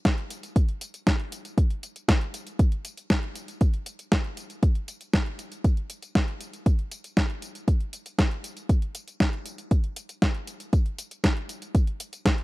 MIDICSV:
0, 0, Header, 1, 2, 480
1, 0, Start_track
1, 0, Tempo, 508475
1, 1488, Time_signature, 4, 2, 24, 8
1, 11741, End_track
2, 0, Start_track
2, 0, Title_t, "Drums"
2, 47, Note_on_c, 9, 36, 103
2, 48, Note_on_c, 9, 38, 112
2, 48, Note_on_c, 9, 42, 52
2, 48, Note_on_c, 9, 54, 28
2, 142, Note_off_c, 9, 36, 0
2, 142, Note_off_c, 9, 38, 0
2, 142, Note_off_c, 9, 42, 0
2, 142, Note_off_c, 9, 54, 0
2, 168, Note_on_c, 9, 42, 26
2, 262, Note_off_c, 9, 42, 0
2, 287, Note_on_c, 9, 42, 93
2, 287, Note_on_c, 9, 54, 66
2, 382, Note_off_c, 9, 42, 0
2, 382, Note_off_c, 9, 54, 0
2, 409, Note_on_c, 9, 42, 52
2, 409, Note_on_c, 9, 54, 38
2, 503, Note_off_c, 9, 42, 0
2, 503, Note_off_c, 9, 54, 0
2, 527, Note_on_c, 9, 36, 117
2, 528, Note_on_c, 9, 42, 51
2, 528, Note_on_c, 9, 54, 28
2, 622, Note_off_c, 9, 36, 0
2, 622, Note_off_c, 9, 42, 0
2, 622, Note_off_c, 9, 54, 0
2, 647, Note_on_c, 9, 42, 26
2, 741, Note_off_c, 9, 42, 0
2, 767, Note_on_c, 9, 42, 93
2, 767, Note_on_c, 9, 54, 68
2, 861, Note_off_c, 9, 42, 0
2, 861, Note_off_c, 9, 54, 0
2, 887, Note_on_c, 9, 42, 51
2, 887, Note_on_c, 9, 54, 38
2, 982, Note_off_c, 9, 42, 0
2, 982, Note_off_c, 9, 54, 0
2, 1007, Note_on_c, 9, 36, 106
2, 1008, Note_on_c, 9, 38, 116
2, 1008, Note_on_c, 9, 42, 53
2, 1008, Note_on_c, 9, 54, 29
2, 1102, Note_off_c, 9, 36, 0
2, 1103, Note_off_c, 9, 38, 0
2, 1103, Note_off_c, 9, 42, 0
2, 1103, Note_off_c, 9, 54, 0
2, 1129, Note_on_c, 9, 42, 26
2, 1223, Note_off_c, 9, 42, 0
2, 1248, Note_on_c, 9, 42, 90
2, 1248, Note_on_c, 9, 54, 67
2, 1342, Note_off_c, 9, 42, 0
2, 1342, Note_off_c, 9, 54, 0
2, 1369, Note_on_c, 9, 42, 52
2, 1369, Note_on_c, 9, 54, 37
2, 1463, Note_off_c, 9, 42, 0
2, 1463, Note_off_c, 9, 54, 0
2, 1488, Note_on_c, 9, 36, 112
2, 1490, Note_on_c, 9, 42, 49
2, 1490, Note_on_c, 9, 54, 25
2, 1582, Note_off_c, 9, 36, 0
2, 1584, Note_off_c, 9, 42, 0
2, 1584, Note_off_c, 9, 54, 0
2, 1609, Note_on_c, 9, 42, 26
2, 1704, Note_off_c, 9, 42, 0
2, 1729, Note_on_c, 9, 42, 86
2, 1729, Note_on_c, 9, 54, 62
2, 1823, Note_off_c, 9, 42, 0
2, 1823, Note_off_c, 9, 54, 0
2, 1849, Note_on_c, 9, 42, 52
2, 1849, Note_on_c, 9, 54, 38
2, 1944, Note_off_c, 9, 42, 0
2, 1944, Note_off_c, 9, 54, 0
2, 1968, Note_on_c, 9, 36, 105
2, 1970, Note_on_c, 9, 38, 115
2, 1970, Note_on_c, 9, 42, 50
2, 1970, Note_on_c, 9, 54, 26
2, 2062, Note_off_c, 9, 36, 0
2, 2064, Note_off_c, 9, 38, 0
2, 2064, Note_off_c, 9, 42, 0
2, 2064, Note_off_c, 9, 54, 0
2, 2089, Note_on_c, 9, 42, 25
2, 2183, Note_off_c, 9, 42, 0
2, 2209, Note_on_c, 9, 42, 88
2, 2209, Note_on_c, 9, 54, 65
2, 2303, Note_off_c, 9, 42, 0
2, 2303, Note_off_c, 9, 54, 0
2, 2328, Note_on_c, 9, 42, 52
2, 2328, Note_on_c, 9, 54, 37
2, 2423, Note_off_c, 9, 42, 0
2, 2423, Note_off_c, 9, 54, 0
2, 2448, Note_on_c, 9, 36, 118
2, 2448, Note_on_c, 9, 42, 52
2, 2448, Note_on_c, 9, 54, 27
2, 2542, Note_off_c, 9, 36, 0
2, 2542, Note_off_c, 9, 42, 0
2, 2542, Note_off_c, 9, 54, 0
2, 2567, Note_on_c, 9, 42, 26
2, 2661, Note_off_c, 9, 42, 0
2, 2688, Note_on_c, 9, 42, 93
2, 2688, Note_on_c, 9, 54, 68
2, 2782, Note_off_c, 9, 42, 0
2, 2782, Note_off_c, 9, 54, 0
2, 2808, Note_on_c, 9, 42, 52
2, 2808, Note_on_c, 9, 54, 36
2, 2902, Note_off_c, 9, 42, 0
2, 2902, Note_off_c, 9, 54, 0
2, 2927, Note_on_c, 9, 38, 122
2, 2927, Note_on_c, 9, 42, 52
2, 2927, Note_on_c, 9, 54, 28
2, 2928, Note_on_c, 9, 36, 106
2, 3022, Note_off_c, 9, 36, 0
2, 3022, Note_off_c, 9, 38, 0
2, 3022, Note_off_c, 9, 42, 0
2, 3022, Note_off_c, 9, 54, 0
2, 3048, Note_on_c, 9, 42, 26
2, 3142, Note_off_c, 9, 42, 0
2, 3167, Note_on_c, 9, 42, 91
2, 3167, Note_on_c, 9, 54, 63
2, 3261, Note_off_c, 9, 42, 0
2, 3261, Note_off_c, 9, 54, 0
2, 3287, Note_on_c, 9, 42, 50
2, 3287, Note_on_c, 9, 54, 36
2, 3382, Note_off_c, 9, 42, 0
2, 3382, Note_off_c, 9, 54, 0
2, 3406, Note_on_c, 9, 42, 47
2, 3406, Note_on_c, 9, 54, 26
2, 3408, Note_on_c, 9, 36, 117
2, 3501, Note_off_c, 9, 42, 0
2, 3501, Note_off_c, 9, 54, 0
2, 3502, Note_off_c, 9, 36, 0
2, 3527, Note_on_c, 9, 42, 25
2, 3621, Note_off_c, 9, 42, 0
2, 3646, Note_on_c, 9, 42, 84
2, 3646, Note_on_c, 9, 54, 61
2, 3740, Note_off_c, 9, 42, 0
2, 3740, Note_off_c, 9, 54, 0
2, 3767, Note_on_c, 9, 42, 50
2, 3767, Note_on_c, 9, 54, 37
2, 3862, Note_off_c, 9, 42, 0
2, 3862, Note_off_c, 9, 54, 0
2, 3887, Note_on_c, 9, 38, 112
2, 3887, Note_on_c, 9, 42, 49
2, 3887, Note_on_c, 9, 54, 26
2, 3888, Note_on_c, 9, 36, 103
2, 3981, Note_off_c, 9, 38, 0
2, 3981, Note_off_c, 9, 42, 0
2, 3981, Note_off_c, 9, 54, 0
2, 3982, Note_off_c, 9, 36, 0
2, 4006, Note_on_c, 9, 42, 24
2, 4100, Note_off_c, 9, 42, 0
2, 4127, Note_on_c, 9, 42, 87
2, 4127, Note_on_c, 9, 54, 61
2, 4221, Note_off_c, 9, 42, 0
2, 4221, Note_off_c, 9, 54, 0
2, 4247, Note_on_c, 9, 42, 49
2, 4247, Note_on_c, 9, 54, 34
2, 4342, Note_off_c, 9, 42, 0
2, 4342, Note_off_c, 9, 54, 0
2, 4367, Note_on_c, 9, 42, 49
2, 4367, Note_on_c, 9, 54, 26
2, 4368, Note_on_c, 9, 36, 119
2, 4462, Note_off_c, 9, 36, 0
2, 4462, Note_off_c, 9, 42, 0
2, 4462, Note_off_c, 9, 54, 0
2, 4487, Note_on_c, 9, 42, 24
2, 4581, Note_off_c, 9, 42, 0
2, 4607, Note_on_c, 9, 42, 88
2, 4607, Note_on_c, 9, 54, 64
2, 4702, Note_off_c, 9, 42, 0
2, 4702, Note_off_c, 9, 54, 0
2, 4727, Note_on_c, 9, 42, 51
2, 4727, Note_on_c, 9, 54, 36
2, 4821, Note_off_c, 9, 42, 0
2, 4821, Note_off_c, 9, 54, 0
2, 4847, Note_on_c, 9, 38, 119
2, 4847, Note_on_c, 9, 42, 50
2, 4847, Note_on_c, 9, 54, 26
2, 4848, Note_on_c, 9, 36, 103
2, 4942, Note_off_c, 9, 36, 0
2, 4942, Note_off_c, 9, 38, 0
2, 4942, Note_off_c, 9, 42, 0
2, 4942, Note_off_c, 9, 54, 0
2, 4968, Note_on_c, 9, 42, 25
2, 5062, Note_off_c, 9, 42, 0
2, 5087, Note_on_c, 9, 42, 86
2, 5087, Note_on_c, 9, 54, 62
2, 5182, Note_off_c, 9, 42, 0
2, 5182, Note_off_c, 9, 54, 0
2, 5208, Note_on_c, 9, 42, 47
2, 5208, Note_on_c, 9, 54, 35
2, 5302, Note_off_c, 9, 42, 0
2, 5302, Note_off_c, 9, 54, 0
2, 5328, Note_on_c, 9, 36, 109
2, 5328, Note_on_c, 9, 42, 45
2, 5328, Note_on_c, 9, 54, 26
2, 5422, Note_off_c, 9, 36, 0
2, 5423, Note_off_c, 9, 42, 0
2, 5423, Note_off_c, 9, 54, 0
2, 5448, Note_on_c, 9, 42, 24
2, 5543, Note_off_c, 9, 42, 0
2, 5567, Note_on_c, 9, 42, 81
2, 5567, Note_on_c, 9, 54, 62
2, 5661, Note_off_c, 9, 42, 0
2, 5661, Note_off_c, 9, 54, 0
2, 5687, Note_on_c, 9, 42, 47
2, 5687, Note_on_c, 9, 54, 36
2, 5781, Note_off_c, 9, 42, 0
2, 5781, Note_off_c, 9, 54, 0
2, 5808, Note_on_c, 9, 36, 101
2, 5808, Note_on_c, 9, 38, 111
2, 5808, Note_on_c, 9, 42, 48
2, 5808, Note_on_c, 9, 54, 26
2, 5902, Note_off_c, 9, 36, 0
2, 5902, Note_off_c, 9, 38, 0
2, 5902, Note_off_c, 9, 42, 0
2, 5902, Note_off_c, 9, 54, 0
2, 5928, Note_on_c, 9, 42, 22
2, 6022, Note_off_c, 9, 42, 0
2, 6047, Note_on_c, 9, 42, 84
2, 6047, Note_on_c, 9, 54, 64
2, 6141, Note_off_c, 9, 42, 0
2, 6141, Note_off_c, 9, 54, 0
2, 6169, Note_on_c, 9, 42, 47
2, 6169, Note_on_c, 9, 54, 36
2, 6263, Note_off_c, 9, 42, 0
2, 6263, Note_off_c, 9, 54, 0
2, 6288, Note_on_c, 9, 36, 115
2, 6288, Note_on_c, 9, 42, 47
2, 6288, Note_on_c, 9, 54, 27
2, 6382, Note_off_c, 9, 36, 0
2, 6383, Note_off_c, 9, 42, 0
2, 6383, Note_off_c, 9, 54, 0
2, 6407, Note_on_c, 9, 42, 23
2, 6502, Note_off_c, 9, 42, 0
2, 6527, Note_on_c, 9, 42, 86
2, 6527, Note_on_c, 9, 54, 68
2, 6622, Note_off_c, 9, 42, 0
2, 6622, Note_off_c, 9, 54, 0
2, 6648, Note_on_c, 9, 42, 48
2, 6648, Note_on_c, 9, 54, 36
2, 6742, Note_off_c, 9, 42, 0
2, 6742, Note_off_c, 9, 54, 0
2, 6767, Note_on_c, 9, 36, 105
2, 6768, Note_on_c, 9, 38, 117
2, 6768, Note_on_c, 9, 42, 48
2, 6768, Note_on_c, 9, 54, 28
2, 6862, Note_off_c, 9, 36, 0
2, 6862, Note_off_c, 9, 38, 0
2, 6862, Note_off_c, 9, 42, 0
2, 6862, Note_off_c, 9, 54, 0
2, 6888, Note_on_c, 9, 42, 25
2, 6983, Note_off_c, 9, 42, 0
2, 7007, Note_on_c, 9, 42, 84
2, 7007, Note_on_c, 9, 54, 65
2, 7101, Note_off_c, 9, 42, 0
2, 7101, Note_off_c, 9, 54, 0
2, 7129, Note_on_c, 9, 42, 49
2, 7129, Note_on_c, 9, 54, 36
2, 7223, Note_off_c, 9, 42, 0
2, 7223, Note_off_c, 9, 54, 0
2, 7247, Note_on_c, 9, 36, 103
2, 7248, Note_on_c, 9, 42, 45
2, 7248, Note_on_c, 9, 54, 27
2, 7341, Note_off_c, 9, 36, 0
2, 7342, Note_off_c, 9, 42, 0
2, 7342, Note_off_c, 9, 54, 0
2, 7367, Note_on_c, 9, 42, 23
2, 7462, Note_off_c, 9, 42, 0
2, 7486, Note_on_c, 9, 42, 83
2, 7486, Note_on_c, 9, 54, 65
2, 7580, Note_off_c, 9, 42, 0
2, 7580, Note_off_c, 9, 54, 0
2, 7607, Note_on_c, 9, 42, 49
2, 7607, Note_on_c, 9, 54, 36
2, 7701, Note_off_c, 9, 42, 0
2, 7701, Note_off_c, 9, 54, 0
2, 7727, Note_on_c, 9, 36, 97
2, 7728, Note_on_c, 9, 38, 105
2, 7728, Note_on_c, 9, 42, 46
2, 7728, Note_on_c, 9, 54, 27
2, 7821, Note_off_c, 9, 36, 0
2, 7822, Note_off_c, 9, 38, 0
2, 7822, Note_off_c, 9, 42, 0
2, 7822, Note_off_c, 9, 54, 0
2, 7847, Note_on_c, 9, 42, 23
2, 7942, Note_off_c, 9, 42, 0
2, 7968, Note_on_c, 9, 42, 83
2, 7968, Note_on_c, 9, 54, 66
2, 8063, Note_off_c, 9, 42, 0
2, 8063, Note_off_c, 9, 54, 0
2, 8087, Note_on_c, 9, 42, 47
2, 8087, Note_on_c, 9, 54, 37
2, 8182, Note_off_c, 9, 42, 0
2, 8182, Note_off_c, 9, 54, 0
2, 8207, Note_on_c, 9, 36, 105
2, 8207, Note_on_c, 9, 42, 47
2, 8207, Note_on_c, 9, 54, 28
2, 8301, Note_off_c, 9, 36, 0
2, 8301, Note_off_c, 9, 42, 0
2, 8301, Note_off_c, 9, 54, 0
2, 8327, Note_on_c, 9, 42, 24
2, 8422, Note_off_c, 9, 42, 0
2, 8446, Note_on_c, 9, 42, 87
2, 8446, Note_on_c, 9, 54, 69
2, 8541, Note_off_c, 9, 42, 0
2, 8541, Note_off_c, 9, 54, 0
2, 8568, Note_on_c, 9, 42, 47
2, 8568, Note_on_c, 9, 54, 37
2, 8662, Note_off_c, 9, 42, 0
2, 8662, Note_off_c, 9, 54, 0
2, 8687, Note_on_c, 9, 36, 100
2, 8687, Note_on_c, 9, 38, 114
2, 8687, Note_on_c, 9, 42, 49
2, 8687, Note_on_c, 9, 54, 29
2, 8781, Note_off_c, 9, 36, 0
2, 8782, Note_off_c, 9, 38, 0
2, 8782, Note_off_c, 9, 42, 0
2, 8782, Note_off_c, 9, 54, 0
2, 8807, Note_on_c, 9, 42, 24
2, 8902, Note_off_c, 9, 42, 0
2, 8926, Note_on_c, 9, 42, 84
2, 8926, Note_on_c, 9, 54, 65
2, 9021, Note_off_c, 9, 42, 0
2, 9021, Note_off_c, 9, 54, 0
2, 9047, Note_on_c, 9, 42, 46
2, 9047, Note_on_c, 9, 54, 37
2, 9141, Note_off_c, 9, 42, 0
2, 9141, Note_off_c, 9, 54, 0
2, 9167, Note_on_c, 9, 36, 103
2, 9167, Note_on_c, 9, 42, 47
2, 9167, Note_on_c, 9, 54, 27
2, 9261, Note_off_c, 9, 42, 0
2, 9261, Note_off_c, 9, 54, 0
2, 9262, Note_off_c, 9, 36, 0
2, 9286, Note_on_c, 9, 42, 25
2, 9381, Note_off_c, 9, 42, 0
2, 9406, Note_on_c, 9, 42, 88
2, 9406, Note_on_c, 9, 54, 67
2, 9500, Note_off_c, 9, 42, 0
2, 9500, Note_off_c, 9, 54, 0
2, 9527, Note_on_c, 9, 42, 51
2, 9527, Note_on_c, 9, 54, 40
2, 9621, Note_off_c, 9, 42, 0
2, 9621, Note_off_c, 9, 54, 0
2, 9648, Note_on_c, 9, 36, 93
2, 9648, Note_on_c, 9, 38, 104
2, 9648, Note_on_c, 9, 42, 47
2, 9648, Note_on_c, 9, 54, 28
2, 9742, Note_off_c, 9, 36, 0
2, 9743, Note_off_c, 9, 38, 0
2, 9743, Note_off_c, 9, 42, 0
2, 9743, Note_off_c, 9, 54, 0
2, 9767, Note_on_c, 9, 42, 24
2, 9861, Note_off_c, 9, 42, 0
2, 9888, Note_on_c, 9, 42, 86
2, 9888, Note_on_c, 9, 54, 68
2, 9982, Note_off_c, 9, 42, 0
2, 9982, Note_off_c, 9, 54, 0
2, 10008, Note_on_c, 9, 42, 49
2, 10008, Note_on_c, 9, 54, 38
2, 10102, Note_off_c, 9, 42, 0
2, 10102, Note_off_c, 9, 54, 0
2, 10128, Note_on_c, 9, 36, 108
2, 10128, Note_on_c, 9, 42, 48
2, 10128, Note_on_c, 9, 54, 28
2, 10222, Note_off_c, 9, 42, 0
2, 10222, Note_off_c, 9, 54, 0
2, 10223, Note_off_c, 9, 36, 0
2, 10249, Note_on_c, 9, 42, 25
2, 10344, Note_off_c, 9, 42, 0
2, 10370, Note_on_c, 9, 42, 91
2, 10370, Note_on_c, 9, 54, 72
2, 10464, Note_off_c, 9, 42, 0
2, 10464, Note_off_c, 9, 54, 0
2, 10490, Note_on_c, 9, 42, 49
2, 10490, Note_on_c, 9, 54, 40
2, 10584, Note_off_c, 9, 42, 0
2, 10584, Note_off_c, 9, 54, 0
2, 10608, Note_on_c, 9, 36, 93
2, 10610, Note_on_c, 9, 38, 112
2, 10610, Note_on_c, 9, 42, 49
2, 10610, Note_on_c, 9, 54, 29
2, 10703, Note_off_c, 9, 36, 0
2, 10704, Note_off_c, 9, 38, 0
2, 10704, Note_off_c, 9, 42, 0
2, 10704, Note_off_c, 9, 54, 0
2, 10730, Note_on_c, 9, 42, 25
2, 10824, Note_off_c, 9, 42, 0
2, 10849, Note_on_c, 9, 42, 85
2, 10849, Note_on_c, 9, 54, 67
2, 10943, Note_off_c, 9, 42, 0
2, 10943, Note_off_c, 9, 54, 0
2, 10969, Note_on_c, 9, 42, 48
2, 10969, Note_on_c, 9, 54, 38
2, 11064, Note_off_c, 9, 42, 0
2, 11064, Note_off_c, 9, 54, 0
2, 11088, Note_on_c, 9, 36, 106
2, 11089, Note_on_c, 9, 42, 48
2, 11089, Note_on_c, 9, 54, 29
2, 11183, Note_off_c, 9, 36, 0
2, 11183, Note_off_c, 9, 42, 0
2, 11183, Note_off_c, 9, 54, 0
2, 11208, Note_on_c, 9, 42, 25
2, 11303, Note_off_c, 9, 42, 0
2, 11329, Note_on_c, 9, 42, 89
2, 11329, Note_on_c, 9, 54, 67
2, 11423, Note_off_c, 9, 42, 0
2, 11423, Note_off_c, 9, 54, 0
2, 11449, Note_on_c, 9, 42, 51
2, 11449, Note_on_c, 9, 54, 40
2, 11543, Note_off_c, 9, 42, 0
2, 11543, Note_off_c, 9, 54, 0
2, 11568, Note_on_c, 9, 36, 98
2, 11570, Note_on_c, 9, 38, 109
2, 11570, Note_on_c, 9, 42, 50
2, 11570, Note_on_c, 9, 54, 29
2, 11663, Note_off_c, 9, 36, 0
2, 11664, Note_off_c, 9, 38, 0
2, 11664, Note_off_c, 9, 42, 0
2, 11664, Note_off_c, 9, 54, 0
2, 11689, Note_on_c, 9, 42, 25
2, 11741, Note_off_c, 9, 42, 0
2, 11741, End_track
0, 0, End_of_file